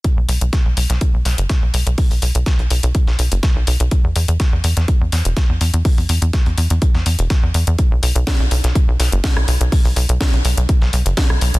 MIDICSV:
0, 0, Header, 1, 3, 480
1, 0, Start_track
1, 0, Tempo, 483871
1, 45, Time_signature, 4, 2, 24, 8
1, 11497, End_track
2, 0, Start_track
2, 0, Title_t, "Analog synth bass"
2, 0, Program_c, 0, 38
2, 171, Note_on_c, 0, 35, 82
2, 261, Note_off_c, 0, 35, 0
2, 283, Note_on_c, 0, 35, 95
2, 384, Note_off_c, 0, 35, 0
2, 410, Note_on_c, 0, 35, 87
2, 501, Note_off_c, 0, 35, 0
2, 650, Note_on_c, 0, 35, 83
2, 740, Note_off_c, 0, 35, 0
2, 764, Note_on_c, 0, 35, 96
2, 864, Note_off_c, 0, 35, 0
2, 891, Note_on_c, 0, 35, 89
2, 981, Note_off_c, 0, 35, 0
2, 1131, Note_on_c, 0, 35, 86
2, 1221, Note_off_c, 0, 35, 0
2, 1244, Note_on_c, 0, 35, 92
2, 1345, Note_off_c, 0, 35, 0
2, 1372, Note_on_c, 0, 30, 93
2, 1462, Note_off_c, 0, 30, 0
2, 1611, Note_on_c, 0, 35, 84
2, 1701, Note_off_c, 0, 35, 0
2, 1725, Note_on_c, 0, 35, 99
2, 1825, Note_off_c, 0, 35, 0
2, 1850, Note_on_c, 0, 35, 90
2, 1941, Note_off_c, 0, 35, 0
2, 2092, Note_on_c, 0, 35, 83
2, 2181, Note_off_c, 0, 35, 0
2, 2205, Note_on_c, 0, 35, 91
2, 2305, Note_off_c, 0, 35, 0
2, 2332, Note_on_c, 0, 35, 89
2, 2421, Note_off_c, 0, 35, 0
2, 2572, Note_on_c, 0, 35, 78
2, 2661, Note_off_c, 0, 35, 0
2, 2685, Note_on_c, 0, 35, 99
2, 2785, Note_off_c, 0, 35, 0
2, 2811, Note_on_c, 0, 35, 91
2, 2901, Note_off_c, 0, 35, 0
2, 3050, Note_on_c, 0, 35, 86
2, 3141, Note_off_c, 0, 35, 0
2, 3165, Note_on_c, 0, 35, 94
2, 3265, Note_off_c, 0, 35, 0
2, 3291, Note_on_c, 0, 30, 88
2, 3381, Note_off_c, 0, 30, 0
2, 3532, Note_on_c, 0, 35, 85
2, 3621, Note_off_c, 0, 35, 0
2, 3644, Note_on_c, 0, 35, 100
2, 3745, Note_off_c, 0, 35, 0
2, 3771, Note_on_c, 0, 35, 91
2, 3861, Note_off_c, 0, 35, 0
2, 4010, Note_on_c, 0, 40, 84
2, 4101, Note_off_c, 0, 40, 0
2, 4125, Note_on_c, 0, 40, 96
2, 4225, Note_off_c, 0, 40, 0
2, 4250, Note_on_c, 0, 40, 89
2, 4340, Note_off_c, 0, 40, 0
2, 4491, Note_on_c, 0, 40, 84
2, 4581, Note_off_c, 0, 40, 0
2, 4603, Note_on_c, 0, 40, 99
2, 4704, Note_off_c, 0, 40, 0
2, 4731, Note_on_c, 0, 40, 86
2, 4821, Note_off_c, 0, 40, 0
2, 4970, Note_on_c, 0, 40, 85
2, 5060, Note_off_c, 0, 40, 0
2, 5084, Note_on_c, 0, 40, 94
2, 5185, Note_off_c, 0, 40, 0
2, 5210, Note_on_c, 0, 28, 87
2, 5301, Note_off_c, 0, 28, 0
2, 5450, Note_on_c, 0, 40, 85
2, 5541, Note_off_c, 0, 40, 0
2, 5563, Note_on_c, 0, 40, 99
2, 5664, Note_off_c, 0, 40, 0
2, 5690, Note_on_c, 0, 40, 90
2, 5780, Note_off_c, 0, 40, 0
2, 5929, Note_on_c, 0, 40, 80
2, 6020, Note_off_c, 0, 40, 0
2, 6043, Note_on_c, 0, 40, 93
2, 6144, Note_off_c, 0, 40, 0
2, 6169, Note_on_c, 0, 40, 92
2, 6260, Note_off_c, 0, 40, 0
2, 6410, Note_on_c, 0, 40, 78
2, 6500, Note_off_c, 0, 40, 0
2, 6524, Note_on_c, 0, 40, 100
2, 6624, Note_off_c, 0, 40, 0
2, 6652, Note_on_c, 0, 40, 89
2, 6741, Note_off_c, 0, 40, 0
2, 6890, Note_on_c, 0, 40, 90
2, 6980, Note_off_c, 0, 40, 0
2, 7004, Note_on_c, 0, 40, 89
2, 7104, Note_off_c, 0, 40, 0
2, 7131, Note_on_c, 0, 28, 87
2, 7221, Note_off_c, 0, 28, 0
2, 7371, Note_on_c, 0, 40, 86
2, 7461, Note_off_c, 0, 40, 0
2, 7484, Note_on_c, 0, 40, 102
2, 7584, Note_off_c, 0, 40, 0
2, 7611, Note_on_c, 0, 40, 94
2, 7701, Note_off_c, 0, 40, 0
2, 7850, Note_on_c, 0, 35, 84
2, 7941, Note_off_c, 0, 35, 0
2, 7963, Note_on_c, 0, 35, 97
2, 8064, Note_off_c, 0, 35, 0
2, 8089, Note_on_c, 0, 35, 96
2, 8180, Note_off_c, 0, 35, 0
2, 8330, Note_on_c, 0, 35, 82
2, 8420, Note_off_c, 0, 35, 0
2, 8444, Note_on_c, 0, 35, 100
2, 8544, Note_off_c, 0, 35, 0
2, 8570, Note_on_c, 0, 35, 90
2, 8661, Note_off_c, 0, 35, 0
2, 8811, Note_on_c, 0, 35, 87
2, 8901, Note_off_c, 0, 35, 0
2, 8924, Note_on_c, 0, 35, 91
2, 9024, Note_off_c, 0, 35, 0
2, 9050, Note_on_c, 0, 30, 89
2, 9141, Note_off_c, 0, 30, 0
2, 9290, Note_on_c, 0, 35, 84
2, 9381, Note_off_c, 0, 35, 0
2, 9403, Note_on_c, 0, 35, 100
2, 9504, Note_off_c, 0, 35, 0
2, 9529, Note_on_c, 0, 35, 92
2, 9620, Note_off_c, 0, 35, 0
2, 9769, Note_on_c, 0, 35, 87
2, 9860, Note_off_c, 0, 35, 0
2, 9882, Note_on_c, 0, 35, 98
2, 9984, Note_off_c, 0, 35, 0
2, 10011, Note_on_c, 0, 35, 93
2, 10101, Note_off_c, 0, 35, 0
2, 10250, Note_on_c, 0, 35, 84
2, 10341, Note_off_c, 0, 35, 0
2, 10364, Note_on_c, 0, 35, 99
2, 10464, Note_off_c, 0, 35, 0
2, 10489, Note_on_c, 0, 35, 87
2, 10580, Note_off_c, 0, 35, 0
2, 10729, Note_on_c, 0, 35, 91
2, 10820, Note_off_c, 0, 35, 0
2, 10843, Note_on_c, 0, 35, 95
2, 10944, Note_off_c, 0, 35, 0
2, 10969, Note_on_c, 0, 30, 89
2, 11060, Note_off_c, 0, 30, 0
2, 11210, Note_on_c, 0, 35, 86
2, 11300, Note_off_c, 0, 35, 0
2, 11323, Note_on_c, 0, 35, 103
2, 11424, Note_off_c, 0, 35, 0
2, 11450, Note_on_c, 0, 35, 88
2, 11497, Note_off_c, 0, 35, 0
2, 11497, End_track
3, 0, Start_track
3, 0, Title_t, "Drums"
3, 44, Note_on_c, 9, 42, 85
3, 45, Note_off_c, 9, 42, 0
3, 45, Note_on_c, 9, 36, 112
3, 45, Note_on_c, 9, 42, 52
3, 144, Note_off_c, 9, 36, 0
3, 144, Note_off_c, 9, 42, 0
3, 284, Note_on_c, 9, 42, 63
3, 284, Note_on_c, 9, 46, 101
3, 383, Note_off_c, 9, 42, 0
3, 383, Note_off_c, 9, 46, 0
3, 411, Note_on_c, 9, 42, 64
3, 510, Note_off_c, 9, 42, 0
3, 524, Note_on_c, 9, 38, 103
3, 524, Note_on_c, 9, 42, 53
3, 525, Note_on_c, 9, 36, 99
3, 623, Note_off_c, 9, 38, 0
3, 623, Note_off_c, 9, 42, 0
3, 624, Note_off_c, 9, 36, 0
3, 763, Note_on_c, 9, 42, 64
3, 764, Note_on_c, 9, 46, 102
3, 862, Note_off_c, 9, 42, 0
3, 863, Note_off_c, 9, 46, 0
3, 890, Note_on_c, 9, 38, 45
3, 891, Note_on_c, 9, 42, 66
3, 989, Note_off_c, 9, 38, 0
3, 990, Note_off_c, 9, 42, 0
3, 1003, Note_on_c, 9, 42, 83
3, 1005, Note_off_c, 9, 42, 0
3, 1005, Note_on_c, 9, 36, 107
3, 1005, Note_on_c, 9, 42, 52
3, 1104, Note_off_c, 9, 36, 0
3, 1104, Note_off_c, 9, 42, 0
3, 1243, Note_on_c, 9, 38, 39
3, 1243, Note_on_c, 9, 42, 64
3, 1245, Note_on_c, 9, 46, 98
3, 1342, Note_off_c, 9, 38, 0
3, 1342, Note_off_c, 9, 42, 0
3, 1344, Note_off_c, 9, 46, 0
3, 1371, Note_on_c, 9, 42, 65
3, 1470, Note_off_c, 9, 42, 0
3, 1483, Note_on_c, 9, 38, 109
3, 1483, Note_on_c, 9, 42, 83
3, 1485, Note_off_c, 9, 42, 0
3, 1485, Note_on_c, 9, 36, 99
3, 1485, Note_on_c, 9, 42, 53
3, 1582, Note_off_c, 9, 38, 0
3, 1584, Note_off_c, 9, 36, 0
3, 1585, Note_off_c, 9, 42, 0
3, 1723, Note_on_c, 9, 42, 62
3, 1725, Note_on_c, 9, 46, 101
3, 1823, Note_off_c, 9, 42, 0
3, 1824, Note_off_c, 9, 46, 0
3, 1852, Note_on_c, 9, 42, 66
3, 1951, Note_off_c, 9, 42, 0
3, 1962, Note_on_c, 9, 46, 80
3, 1965, Note_on_c, 9, 36, 119
3, 1965, Note_on_c, 9, 42, 49
3, 2061, Note_off_c, 9, 46, 0
3, 2064, Note_off_c, 9, 36, 0
3, 2064, Note_off_c, 9, 42, 0
3, 2092, Note_on_c, 9, 46, 62
3, 2191, Note_off_c, 9, 46, 0
3, 2203, Note_on_c, 9, 42, 64
3, 2205, Note_on_c, 9, 46, 113
3, 2302, Note_off_c, 9, 42, 0
3, 2304, Note_off_c, 9, 46, 0
3, 2331, Note_on_c, 9, 42, 61
3, 2431, Note_off_c, 9, 42, 0
3, 2443, Note_on_c, 9, 38, 111
3, 2443, Note_on_c, 9, 42, 81
3, 2444, Note_off_c, 9, 42, 0
3, 2444, Note_on_c, 9, 36, 99
3, 2444, Note_on_c, 9, 42, 50
3, 2542, Note_off_c, 9, 38, 0
3, 2543, Note_off_c, 9, 42, 0
3, 2544, Note_off_c, 9, 36, 0
3, 2569, Note_on_c, 9, 42, 42
3, 2668, Note_off_c, 9, 42, 0
3, 2682, Note_on_c, 9, 42, 63
3, 2684, Note_on_c, 9, 46, 105
3, 2782, Note_off_c, 9, 42, 0
3, 2783, Note_off_c, 9, 46, 0
3, 2809, Note_on_c, 9, 42, 42
3, 2810, Note_off_c, 9, 42, 0
3, 2810, Note_on_c, 9, 42, 63
3, 2909, Note_off_c, 9, 42, 0
3, 2923, Note_on_c, 9, 42, 81
3, 2924, Note_off_c, 9, 42, 0
3, 2924, Note_on_c, 9, 36, 117
3, 2924, Note_on_c, 9, 42, 52
3, 3023, Note_off_c, 9, 36, 0
3, 3023, Note_off_c, 9, 42, 0
3, 3049, Note_on_c, 9, 38, 44
3, 3148, Note_off_c, 9, 38, 0
3, 3162, Note_on_c, 9, 42, 66
3, 3163, Note_on_c, 9, 46, 102
3, 3261, Note_off_c, 9, 42, 0
3, 3262, Note_off_c, 9, 46, 0
3, 3288, Note_on_c, 9, 42, 43
3, 3291, Note_off_c, 9, 42, 0
3, 3291, Note_on_c, 9, 42, 62
3, 3390, Note_off_c, 9, 42, 0
3, 3402, Note_on_c, 9, 38, 106
3, 3402, Note_on_c, 9, 42, 83
3, 3404, Note_off_c, 9, 42, 0
3, 3404, Note_on_c, 9, 36, 105
3, 3404, Note_on_c, 9, 42, 52
3, 3501, Note_off_c, 9, 38, 0
3, 3503, Note_off_c, 9, 36, 0
3, 3503, Note_off_c, 9, 42, 0
3, 3642, Note_on_c, 9, 42, 63
3, 3643, Note_on_c, 9, 46, 102
3, 3741, Note_off_c, 9, 42, 0
3, 3742, Note_off_c, 9, 46, 0
3, 3771, Note_on_c, 9, 42, 67
3, 3870, Note_off_c, 9, 42, 0
3, 3882, Note_on_c, 9, 42, 89
3, 3883, Note_off_c, 9, 42, 0
3, 3883, Note_on_c, 9, 42, 47
3, 3884, Note_on_c, 9, 36, 116
3, 3982, Note_off_c, 9, 42, 0
3, 3983, Note_off_c, 9, 36, 0
3, 4122, Note_on_c, 9, 42, 62
3, 4123, Note_on_c, 9, 46, 113
3, 4221, Note_off_c, 9, 42, 0
3, 4222, Note_off_c, 9, 46, 0
3, 4249, Note_on_c, 9, 42, 60
3, 4348, Note_off_c, 9, 42, 0
3, 4362, Note_on_c, 9, 42, 50
3, 4363, Note_off_c, 9, 42, 0
3, 4363, Note_on_c, 9, 38, 113
3, 4363, Note_on_c, 9, 42, 84
3, 4364, Note_on_c, 9, 36, 102
3, 4462, Note_off_c, 9, 38, 0
3, 4462, Note_off_c, 9, 42, 0
3, 4463, Note_off_c, 9, 36, 0
3, 4602, Note_on_c, 9, 46, 108
3, 4604, Note_on_c, 9, 42, 64
3, 4701, Note_off_c, 9, 46, 0
3, 4703, Note_off_c, 9, 42, 0
3, 4730, Note_on_c, 9, 38, 46
3, 4730, Note_on_c, 9, 42, 64
3, 4829, Note_off_c, 9, 38, 0
3, 4829, Note_off_c, 9, 42, 0
3, 4843, Note_on_c, 9, 42, 47
3, 4844, Note_off_c, 9, 42, 0
3, 4844, Note_on_c, 9, 36, 119
3, 4844, Note_on_c, 9, 42, 84
3, 4943, Note_off_c, 9, 36, 0
3, 4943, Note_off_c, 9, 42, 0
3, 5082, Note_on_c, 9, 46, 105
3, 5084, Note_on_c, 9, 38, 41
3, 5084, Note_on_c, 9, 42, 63
3, 5181, Note_off_c, 9, 46, 0
3, 5183, Note_off_c, 9, 38, 0
3, 5183, Note_off_c, 9, 42, 0
3, 5210, Note_on_c, 9, 42, 60
3, 5309, Note_off_c, 9, 42, 0
3, 5323, Note_on_c, 9, 38, 112
3, 5323, Note_on_c, 9, 42, 81
3, 5324, Note_off_c, 9, 42, 0
3, 5324, Note_on_c, 9, 36, 105
3, 5324, Note_on_c, 9, 42, 49
3, 5422, Note_off_c, 9, 38, 0
3, 5423, Note_off_c, 9, 36, 0
3, 5423, Note_off_c, 9, 42, 0
3, 5564, Note_on_c, 9, 42, 63
3, 5564, Note_on_c, 9, 46, 105
3, 5663, Note_off_c, 9, 42, 0
3, 5663, Note_off_c, 9, 46, 0
3, 5691, Note_on_c, 9, 42, 64
3, 5790, Note_off_c, 9, 42, 0
3, 5803, Note_on_c, 9, 46, 83
3, 5804, Note_on_c, 9, 36, 117
3, 5804, Note_on_c, 9, 42, 49
3, 5903, Note_off_c, 9, 36, 0
3, 5903, Note_off_c, 9, 42, 0
3, 5903, Note_off_c, 9, 46, 0
3, 5930, Note_on_c, 9, 46, 62
3, 6030, Note_off_c, 9, 46, 0
3, 6043, Note_on_c, 9, 46, 110
3, 6044, Note_on_c, 9, 42, 60
3, 6142, Note_off_c, 9, 46, 0
3, 6143, Note_off_c, 9, 42, 0
3, 6171, Note_on_c, 9, 42, 59
3, 6270, Note_off_c, 9, 42, 0
3, 6283, Note_on_c, 9, 38, 116
3, 6283, Note_on_c, 9, 42, 82
3, 6284, Note_off_c, 9, 42, 0
3, 6284, Note_on_c, 9, 36, 101
3, 6284, Note_on_c, 9, 42, 47
3, 6382, Note_off_c, 9, 38, 0
3, 6383, Note_off_c, 9, 36, 0
3, 6383, Note_off_c, 9, 42, 0
3, 6410, Note_on_c, 9, 42, 41
3, 6509, Note_off_c, 9, 42, 0
3, 6523, Note_on_c, 9, 42, 67
3, 6523, Note_on_c, 9, 46, 107
3, 6622, Note_off_c, 9, 46, 0
3, 6623, Note_off_c, 9, 42, 0
3, 6650, Note_on_c, 9, 42, 43
3, 6749, Note_off_c, 9, 42, 0
3, 6763, Note_on_c, 9, 42, 48
3, 6764, Note_off_c, 9, 42, 0
3, 6764, Note_on_c, 9, 36, 115
3, 6764, Note_on_c, 9, 42, 82
3, 6863, Note_off_c, 9, 36, 0
3, 6863, Note_off_c, 9, 42, 0
3, 6890, Note_on_c, 9, 38, 46
3, 6989, Note_off_c, 9, 38, 0
3, 7003, Note_on_c, 9, 46, 108
3, 7004, Note_on_c, 9, 42, 65
3, 7102, Note_off_c, 9, 46, 0
3, 7103, Note_off_c, 9, 42, 0
3, 7130, Note_on_c, 9, 42, 59
3, 7131, Note_off_c, 9, 42, 0
3, 7131, Note_on_c, 9, 42, 44
3, 7230, Note_off_c, 9, 42, 0
3, 7243, Note_on_c, 9, 38, 114
3, 7243, Note_on_c, 9, 42, 46
3, 7244, Note_on_c, 9, 36, 102
3, 7342, Note_off_c, 9, 38, 0
3, 7342, Note_off_c, 9, 42, 0
3, 7343, Note_off_c, 9, 36, 0
3, 7483, Note_on_c, 9, 46, 103
3, 7484, Note_on_c, 9, 42, 65
3, 7582, Note_off_c, 9, 46, 0
3, 7583, Note_off_c, 9, 42, 0
3, 7610, Note_on_c, 9, 42, 61
3, 7710, Note_off_c, 9, 42, 0
3, 7723, Note_on_c, 9, 42, 90
3, 7724, Note_off_c, 9, 42, 0
3, 7724, Note_on_c, 9, 36, 115
3, 7724, Note_on_c, 9, 42, 51
3, 7823, Note_off_c, 9, 42, 0
3, 7824, Note_off_c, 9, 36, 0
3, 7964, Note_on_c, 9, 42, 64
3, 7964, Note_on_c, 9, 46, 113
3, 8063, Note_off_c, 9, 42, 0
3, 8063, Note_off_c, 9, 46, 0
3, 8091, Note_on_c, 9, 42, 58
3, 8190, Note_off_c, 9, 42, 0
3, 8203, Note_on_c, 9, 38, 114
3, 8203, Note_on_c, 9, 42, 83
3, 8204, Note_off_c, 9, 38, 0
3, 8204, Note_off_c, 9, 42, 0
3, 8204, Note_on_c, 9, 36, 95
3, 8204, Note_on_c, 9, 38, 106
3, 8204, Note_on_c, 9, 42, 49
3, 8303, Note_off_c, 9, 38, 0
3, 8304, Note_off_c, 9, 36, 0
3, 8304, Note_off_c, 9, 42, 0
3, 8444, Note_on_c, 9, 42, 66
3, 8444, Note_on_c, 9, 46, 102
3, 8543, Note_off_c, 9, 42, 0
3, 8544, Note_off_c, 9, 46, 0
3, 8571, Note_on_c, 9, 38, 47
3, 8572, Note_on_c, 9, 42, 63
3, 8670, Note_off_c, 9, 38, 0
3, 8671, Note_off_c, 9, 42, 0
3, 8684, Note_on_c, 9, 36, 112
3, 8684, Note_on_c, 9, 42, 86
3, 8686, Note_off_c, 9, 42, 0
3, 8686, Note_on_c, 9, 42, 49
3, 8783, Note_off_c, 9, 36, 0
3, 8785, Note_off_c, 9, 42, 0
3, 8924, Note_on_c, 9, 38, 41
3, 8924, Note_on_c, 9, 42, 63
3, 8925, Note_on_c, 9, 46, 106
3, 9024, Note_off_c, 9, 38, 0
3, 9024, Note_off_c, 9, 42, 0
3, 9024, Note_off_c, 9, 46, 0
3, 9052, Note_on_c, 9, 42, 59
3, 9151, Note_off_c, 9, 42, 0
3, 9164, Note_on_c, 9, 36, 101
3, 9164, Note_on_c, 9, 38, 109
3, 9164, Note_on_c, 9, 42, 86
3, 9165, Note_off_c, 9, 42, 0
3, 9165, Note_on_c, 9, 42, 49
3, 9263, Note_off_c, 9, 38, 0
3, 9264, Note_off_c, 9, 36, 0
3, 9264, Note_off_c, 9, 42, 0
3, 9291, Note_on_c, 9, 37, 84
3, 9390, Note_off_c, 9, 37, 0
3, 9404, Note_on_c, 9, 46, 103
3, 9405, Note_on_c, 9, 42, 62
3, 9503, Note_off_c, 9, 46, 0
3, 9504, Note_off_c, 9, 42, 0
3, 9532, Note_on_c, 9, 42, 62
3, 9631, Note_off_c, 9, 42, 0
3, 9644, Note_on_c, 9, 46, 80
3, 9645, Note_on_c, 9, 36, 111
3, 9646, Note_on_c, 9, 42, 49
3, 9743, Note_off_c, 9, 46, 0
3, 9744, Note_off_c, 9, 36, 0
3, 9746, Note_off_c, 9, 42, 0
3, 9772, Note_on_c, 9, 46, 60
3, 9871, Note_off_c, 9, 46, 0
3, 9884, Note_on_c, 9, 42, 65
3, 9885, Note_on_c, 9, 46, 105
3, 9983, Note_off_c, 9, 42, 0
3, 9984, Note_off_c, 9, 46, 0
3, 10011, Note_on_c, 9, 42, 64
3, 10110, Note_off_c, 9, 42, 0
3, 10124, Note_on_c, 9, 38, 113
3, 10124, Note_on_c, 9, 42, 86
3, 10125, Note_off_c, 9, 42, 0
3, 10125, Note_on_c, 9, 36, 97
3, 10125, Note_on_c, 9, 42, 53
3, 10223, Note_off_c, 9, 38, 0
3, 10224, Note_off_c, 9, 36, 0
3, 10224, Note_off_c, 9, 42, 0
3, 10251, Note_on_c, 9, 42, 44
3, 10350, Note_off_c, 9, 42, 0
3, 10364, Note_on_c, 9, 42, 68
3, 10364, Note_on_c, 9, 46, 101
3, 10463, Note_off_c, 9, 42, 0
3, 10463, Note_off_c, 9, 46, 0
3, 10490, Note_on_c, 9, 42, 44
3, 10491, Note_off_c, 9, 42, 0
3, 10491, Note_on_c, 9, 42, 67
3, 10590, Note_off_c, 9, 42, 0
3, 10604, Note_on_c, 9, 42, 52
3, 10605, Note_on_c, 9, 36, 115
3, 10703, Note_off_c, 9, 42, 0
3, 10704, Note_off_c, 9, 36, 0
3, 10730, Note_on_c, 9, 38, 46
3, 10829, Note_off_c, 9, 38, 0
3, 10843, Note_on_c, 9, 42, 66
3, 10844, Note_on_c, 9, 46, 97
3, 10942, Note_off_c, 9, 42, 0
3, 10943, Note_off_c, 9, 46, 0
3, 10969, Note_on_c, 9, 42, 43
3, 10971, Note_off_c, 9, 42, 0
3, 10971, Note_on_c, 9, 42, 62
3, 11070, Note_off_c, 9, 42, 0
3, 11082, Note_on_c, 9, 38, 118
3, 11082, Note_on_c, 9, 42, 85
3, 11083, Note_off_c, 9, 38, 0
3, 11083, Note_on_c, 9, 38, 107
3, 11084, Note_off_c, 9, 42, 0
3, 11084, Note_on_c, 9, 42, 51
3, 11085, Note_on_c, 9, 36, 100
3, 11182, Note_off_c, 9, 38, 0
3, 11183, Note_off_c, 9, 42, 0
3, 11184, Note_off_c, 9, 36, 0
3, 11210, Note_on_c, 9, 37, 84
3, 11309, Note_off_c, 9, 37, 0
3, 11322, Note_on_c, 9, 42, 67
3, 11323, Note_on_c, 9, 46, 99
3, 11421, Note_off_c, 9, 42, 0
3, 11423, Note_off_c, 9, 46, 0
3, 11450, Note_on_c, 9, 42, 66
3, 11497, Note_off_c, 9, 42, 0
3, 11497, End_track
0, 0, End_of_file